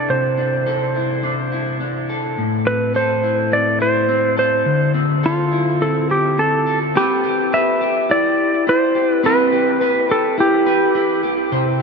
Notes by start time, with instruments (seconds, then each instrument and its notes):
Already playing: clean electric guitar D4 E4 A4, electric slide guitar D5
0.09 clean electric guitar C3, electric slide guitar C5
0.38 clean electric guitar D4
0.66 clean electric guitar A4
0.95 clean electric guitar E4
1.23 clean electric guitar D4
1.52 clean electric guitar E4
1.80 clean electric guitar D4
2.09 clean electric guitar A4
2.38 clean electric guitar A2
2.66 clean electric guitar C4, electric slide guitar B4
2.94 clean electric guitar A4, electric slide guitar C5
3.23 clean electric guitar E4
3.52 clean electric guitar C4, electric slide guitar D5
3.80 clean electric guitar E4, electric slide guitar C5
4.08 clean electric guitar C4
4.37 clean electric guitar A4, electric slide guitar C5
4.66 clean electric guitar D3
4.94 clean electric guitar C4
5.23 electric slide guitar F4, clean electric guitar A4
5.52 clean electric guitar E4
5.81 clean electric guitar C4, electric slide guitar A4
6.09 clean electric guitar E4, electric slide guitar G4
6.38 clean electric guitar C4, electric slide guitar A4
6.67 clean electric guitar A4
6.95 clean electric guitar C4 B4, electric slide guitar G4
7.24 clean electric guitar G4
7.53 clean electric guitar B4, electric slide guitar E5
7.81 clean electric guitar G4
8.09 clean electric guitar E4, electric slide guitar D5
8.67 clean electric guitar E4, electric slide guitar C5
8.95 clean electric guitar G4
9.10 electric slide guitar B4
9.23 clean electric guitar C4 B4, electric slide guitar B4
9.52 clean electric guitar G4
9.81 clean electric guitar B4
10.09 clean electric guitar G4, electric slide guitar A4
10.38 clean electric guitar E4, electric slide guitar G4
10.66 clean electric guitar B4
10.95 clean electric guitar E4
11.23 clean electric guitar G4
11.52 clean electric guitar C3 C5